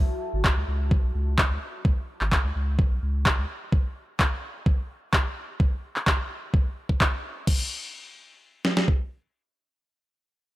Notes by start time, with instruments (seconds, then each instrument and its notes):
0.33 sub bass G#1
0.44 kick, clap
0.57 sub bass C#2
0.68 sub bass C#2
0.91 kick
1.04 sub bass B1
1.15 sub bass C#2
1.38 kick, clap
1.50 sub bass C#2
1.85 sub bass C#2, kick
2.21 sub bass G#1, clap
2.32 kick, clap
2.44 sub bass C#2
2.56 sub bass C#2
2.79 kick
2.91 sub bass B1
3.02 sub bass C#2
3.26 kick, clap
3.38 sub bass C#2
3.72 kick
4.19 kick, clap
4.66 kick
5.13 kick, clap
5.60 kick
5.96 clap
6.07 kick, clap
6.54 kick
6.89 kick
7.01 kick, clap
7.47 kick, crash
8.65 snare
8.77 snare
8.88 kick